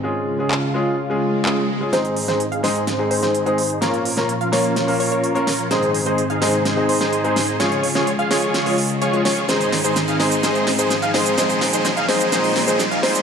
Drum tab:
HH |----------------|xxoxxxoxx-oxxxox|xxoxxxoxxooxxxox|xxoxxxoxx-oxxxo-|
SH |----------------|----------------|----------------|----------------|
CP |----x-------x---|----------------|----------------|----------------|
SD |----------------|o--o--o-o--o----|o--o--o-o-----o-|o-----o-o--o--o-|

HH |xxoxxxoxxooxxxox|xxoxxxoxx-oxxxox|xxoxxxoxxooxxxox|
SH |----------------|xx-xxx-xxx-xxx-x|xx-xxx-xxx-xxx-x|
CP |----------------|----------------|----------------|
SD |o--o--o-o-----o-|o-o-o-o-o-o-o-o-|o-o-o-o-o-o-o-o-|